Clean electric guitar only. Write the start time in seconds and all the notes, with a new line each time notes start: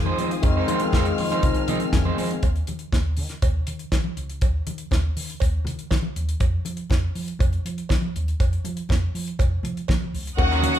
0.06 C4 D#4 G#4 C5
0.19 C4 D#4 G#4 C5
0.32 muted clean electric guitar stroke
0.45 muted clean electric guitar stroke
0.57 C4 D#4 G#4 C5
0.70 C4 D#4 G#4 C5
0.82 muted clean electric guitar stroke
0.95 C4 D#4 G#4 C5
1.07 muted clean electric guitar stroke
1.20 muted clean electric guitar stroke
1.32 C4 D#4 G#4 C5
1.43 muted clean electric guitar stroke
1.56 muted clean electric guitar stroke
1.68 C4 D#4 G#4 D#5
1.80 muted clean electric guitar stroke
1.93 muted clean electric guitar stroke
2.05 C4 D#4 G#4 C5
2.18 C4 D#4 G#4 C5
2.31 muted clean electric guitar stroke
10.39 muted clean electric guitar stroke
10.51 F#3 C#4 F4 A#4
10.62 F#3 C#4 F4 A#4
10.75 muted clean electric guitar stroke